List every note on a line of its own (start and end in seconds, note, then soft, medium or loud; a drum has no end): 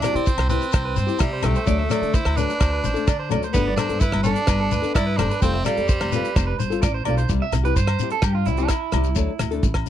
0.00 0.15 G3 medium
0.00 0.15 C4 medium
0.00 0.17 D4 medium
0.00 0.26 D5 medium
0.00 low agogo medium
0.00 shekere medium
0.04 0.14 E4 medium
0.04 0.13 G4 medium
0.04 cross-stick medium
0.04 closed hi-hat medium
0.14 0.34 C3 medium
0.14 0.49 C4 loud
0.14 0.30 C4 soft
0.14 0.29 E4 soft
0.14 0.29 G4 medium
0.14 closed hi-hat medium
0.26 0.50 C5 medium
0.26 kick medium
0.26 closed hi-hat medium
0.26 shekere medium
0.37 0.57 C2 medium
0.37 cross-stick medium
0.37 low agogo medium
0.48 0.64 G3 medium
0.48 1.22 C4 medium
0.48 0.64 C4 medium
0.48 0.65 E4 medium
0.48 0.65 G4 medium
0.48 0.73 B4 medium
0.48 closed hi-hat medium
0.48 shekere loud
0.61 closed hi-hat soft
0.61 shekere soft
0.72 0.93 C2 medium
0.72 0.85 C5 medium
0.72 kick loud
0.72 cross-stick medium
0.72 closed hi-hat medium
0.72 low agogo medium
0.72 shekere medium
0.85 0.96 B4 medium
0.96 1.07 G2 medium
0.96 1.20 C5 medium
0.96 closed hi-hat medium
0.96 shekere medium
1.07 1.23 C4 soft
1.07 1.23 E4 soft
1.07 1.22 G4 medium
1.07 closed hi-hat soft
1.07 shekere soft
1.19 1.45 C3 loud
1.19 1.46 G3 medium
1.19 1.32 E5 medium
1.19 kick medium
1.19 cross-stick medium
1.19 closed hi-hat medium
1.19 low agogo medium
1.19 shekere medium
1.33 1.44 C5 medium
1.42 1.53 C2 loud
1.42 1.57 G3 medium
1.42 2.16 A3 medium
1.42 1.58 C4 medium
1.42 1.58 E4 medium
1.42 1.56 G4 medium
1.42 1.59 G4 medium
1.42 cross-stick medium
1.42 closed hi-hat soft
1.42 low agogo medium
1.42 shekere medium
1.55 1.67 C5 medium
1.55 closed hi-hat soft
1.55 shekere soft
1.66 1.86 D2 loud
1.66 1.81 F#3 medium
1.66 1.81 A3 medium
1.66 1.82 D4 medium
1.66 1.82 A4 medium
1.66 1.78 D5 medium
1.66 kick medium
1.66 closed hi-hat soft
1.66 shekere medium
1.79 1.90 E5 medium
1.89 2.01 F#3 medium
1.89 2.02 A3 medium
1.89 2.02 D4 medium
1.89 2.00 A4 medium
1.89 2.13 D5 medium
1.89 cross-stick medium
1.89 closed hi-hat soft
1.89 low agogo medium
1.89 shekere medium
2.02 2.21 D3 medium
2.02 2.17 A3 soft
2.02 2.17 D4 medium
2.02 2.16 A4 medium
2.02 closed hi-hat soft
2.14 2.39 E4 loud
2.14 2.36 C5 medium
2.14 kick medium
2.14 closed hi-hat soft
2.14 shekere medium
2.25 2.44 D2 medium
2.25 cross-stick medium
2.25 low agogo medium
2.36 2.51 F#3 medium
2.36 2.51 A3 medium
2.36 3.31 D4 loud
2.36 2.52 D4 medium
2.36 2.52 A4 medium
2.36 2.59 B4 medium
2.36 closed hi-hat medium
2.36 shekere medium
2.49 closed hi-hat soft
2.49 shekere soft
2.60 2.79 D2 loud
2.60 2.72 C5 medium
2.60 kick medium
2.60 cross-stick medium
2.60 closed hi-hat soft
2.60 low agogo medium
2.60 shekere medium
2.72 2.84 B4 medium
2.84 2.94 A1 medium
2.84 3.07 C5 medium
2.84 closed hi-hat medium
2.84 shekere medium
2.94 3.10 A3 soft
2.94 3.10 D4 medium
2.94 3.09 A4 medium
2.94 closed hi-hat soft
2.94 shekere soft
3.07 3.33 D3 medium
3.07 3.19 D5 medium
3.07 kick medium
3.07 cross-stick medium
3.07 closed hi-hat medium
3.07 low agogo medium
3.07 shekere medium
3.19 3.30 C5 medium
3.29 3.41 D2 medium
3.29 3.44 F#3 medium
3.29 3.45 A3 medium
3.29 3.45 D4 medium
3.29 3.45 A4 medium
3.29 3.43 D5 medium
3.29 closed hi-hat medium
3.29 low agogo medium
3.29 shekere medium
3.43 3.55 C5 medium
3.43 closed hi-hat medium
3.43 shekere soft
3.53 3.73 G1 loud
3.53 3.68 G3 medium
3.53 3.76 B3 loud
3.53 3.68 B3 medium
3.53 3.69 D4 medium
3.53 3.69 A4 medium
3.53 3.66 B4 loud
3.53 kick medium
3.53 closed hi-hat soft
3.53 shekere medium
3.67 3.78 D5 medium
3.76 3.89 G3 medium
3.76 3.89 B3 medium
3.76 4.01 D4 loud
3.76 3.89 D4 medium
3.76 3.88 A4 medium
3.76 4.01 C5 medium
3.76 cross-stick medium
3.76 closed hi-hat medium
3.76 low agogo medium
3.76 shekere medium
3.89 4.08 G2 medium
3.89 4.05 B3 soft
3.89 4.04 D4 soft
3.89 4.03 A4 medium
3.89 closed hi-hat medium
4.00 4.23 E4 loud
4.00 4.24 B4 medium
4.00 kick medium
4.00 closed hi-hat medium
4.00 shekere medium
4.12 4.32 G1 medium
4.12 cross-stick medium
4.12 low agogo medium
4.24 4.38 G3 medium
4.24 4.39 B3 medium
4.24 4.90 D4 loud
4.24 4.39 D4 medium
4.24 4.47 A4 medium
4.24 4.40 A4 medium
4.24 closed hi-hat soft
4.24 shekere loud
4.35 closed hi-hat medium
4.35 shekere soft
4.47 4.67 G1 medium
4.47 4.59 B4 medium
4.47 kick medium
4.47 cross-stick medium
4.47 closed hi-hat medium
4.47 low agogo medium
4.47 shekere medium
4.60 4.71 A4 medium
4.71 4.81 D2 medium
4.71 4.94 B4 medium
4.71 closed hi-hat medium
4.71 shekere loud
4.82 4.98 B3 soft
4.82 4.98 D4 soft
4.82 4.97 A4 medium
4.82 closed hi-hat soft
4.82 shekere soft
4.95 5.21 G2 medium
4.95 5.19 E4 loud
4.95 5.06 D5 loud
4.95 kick medium
4.95 cross-stick medium
4.95 closed hi-hat medium
4.95 low agogo medium
4.95 shekere medium
5.06 5.17 B4 medium
5.17 5.28 G1 medium
5.17 5.32 G3 medium
5.17 5.41 D4 loud
5.17 5.33 D4 medium
5.17 5.33 A4 medium
5.17 5.29 C5 medium
5.17 cross-stick medium
5.17 closed hi-hat medium
5.17 low agogo medium
5.17 shekere medium
5.30 5.41 B4 medium
5.30 closed hi-hat medium
5.30 shekere soft
5.42 5.60 F1 loud
5.42 5.56 G3 medium
5.42 5.56 C4 medium
5.42 5.64 C4 loud
5.42 5.56 F4 medium
5.42 5.57 A4 medium
5.42 5.53 C5 medium
5.42 kick medium
5.42 closed hi-hat soft
5.42 shekere medium
5.54 5.65 E5 medium
5.64 5.76 G3 medium
5.64 6.55 G3 loud
5.64 5.77 C4 medium
5.64 5.77 F4 medium
5.64 5.76 A4 medium
5.64 5.87 D5 medium
5.64 cross-stick medium
5.64 closed hi-hat soft
5.64 low agogo medium
5.64 shekere medium
5.77 5.96 F2 medium
5.77 5.92 C4 soft
5.77 5.91 A4 medium
5.77 muted nylon-string guitar stroke medium
5.77 closed hi-hat soft
5.89 6.11 C5 medium
5.89 kick medium
5.89 closed hi-hat soft
5.89 shekere medium
6.01 6.19 F1 medium
6.01 cross-stick medium
6.01 low agogo medium
6.12 6.26 G3 medium
6.12 6.27 C4 medium
6.12 6.27 F4 medium
6.12 6.27 A4 medium
6.12 6.34 B4 medium
6.12 closed hi-hat medium
6.12 shekere loud
6.25 closed hi-hat soft
6.25 shekere soft
6.36 6.54 F1 loud
6.36 6.46 C5 medium
6.36 kick loud
6.36 cross-stick medium
6.36 closed hi-hat medium
6.36 low agogo medium
6.36 shekere medium
6.47 6.58 B4 medium
6.59 6.80 G1 medium
6.59 6.81 C5 medium
6.59 closed hi-hat soft
6.59 shekere loud
6.70 6.86 C4 soft
6.70 6.85 F4 medium
6.70 6.84 A4 medium
6.70 closed hi-hat soft
6.70 shekere soft
6.82 7.04 A1 medium
6.82 6.93 D5 medium
6.82 kick medium
6.82 cross-stick medium
6.82 closed hi-hat soft
6.82 low agogo medium
6.82 shekere medium
6.94 7.05 C5 medium
7.05 7.27 B1 medium
7.05 7.20 G3 medium
7.05 7.20 C4 medium
7.05 7.21 F4 medium
7.05 7.21 A4 medium
7.05 7.17 D5 medium
7.05 closed hi-hat soft
7.05 low agogo medium
7.18 7.28 C5 medium
7.18 closed hi-hat soft
7.18 shekere soft
7.29 7.39 C2 medium
7.29 7.43 G3 medium
7.29 7.43 C4 medium
7.29 7.44 E4 medium
7.29 muted nylon-string guitar stroke medium
7.29 kick medium
7.29 closed hi-hat soft
7.29 shekere medium
7.42 7.53 E5 medium
7.52 7.71 C2 loud
7.52 cross-stick medium
7.52 closed hi-hat soft
7.52 low agogo medium
7.52 shekere medium
7.63 7.79 C4 soft
7.63 7.79 E4 medium
7.63 7.78 G4 soft
7.63 7.76 B4 medium
7.63 closed hi-hat soft
7.76 7.94 G2 medium
7.76 8.09 C5 medium
7.76 kick medium
7.76 closed hi-hat medium
7.76 shekere medium
7.87 cross-stick medium
7.87 low agogo medium
7.99 8.13 G3 medium
7.99 8.14 C4 medium
7.99 8.15 E4 medium
7.99 closed hi-hat soft
7.99 shekere loud
8.03 8.15 G4 medium
8.10 8.23 A4 medium
8.10 closed hi-hat medium
8.22 8.41 G2 loud
8.22 8.34 G4 medium
8.22 kick loud
8.22 cross-stick medium
8.22 closed hi-hat medium
8.22 low agogo medium
8.22 shekere medium
8.35 8.46 F4 medium
8.45 8.65 C2 medium
8.45 8.58 G3 medium
8.45 8.58 C4 medium
8.45 8.57 E4 medium
8.45 8.58 E4 medium
8.45 8.56 G4 medium
8.45 closed hi-hat medium
8.45 shekere medium
8.57 8.73 C4 soft
8.57 8.70 D4 medium
8.57 8.73 E4 soft
8.57 8.72 G4 soft
8.57 closed hi-hat soft
8.57 shekere soft
8.69 9.89 E4 medium
8.69 kick medium
8.69 cross-stick medium
8.69 closed hi-hat medium
8.69 low agogo medium
8.69 shekere medium
8.92 9.11 C2 medium
8.92 9.07 G3 medium
8.92 9.07 C4 medium
8.92 9.08 E4 medium
8.92 9.08 G4 medium
8.92 cross-stick medium
8.92 closed hi-hat soft
8.92 low agogo medium
8.92 shekere medium
9.04 closed hi-hat soft
9.04 shekere soft
9.15 9.26 D2 medium
9.15 9.30 F#3 medium
9.15 9.30 A3 medium
9.15 9.31 D4 medium
9.15 9.31 A4 medium
9.15 kick medium
9.15 closed hi-hat soft
9.15 shekere medium
9.39 9.58 D2 medium
9.39 cross-stick medium
9.39 closed hi-hat soft
9.39 low agogo medium
9.39 shekere medium
9.51 9.67 A3 soft
9.51 9.66 D4 medium
9.51 9.65 A4 medium
9.51 closed hi-hat soft
9.63 9.82 A1 medium
9.63 kick medium
9.63 closed hi-hat soft
9.63 shekere medium
9.74 kick medium
9.74 cross-stick medium
9.74 low agogo medium
9.86 muted nylon-string guitar stroke medium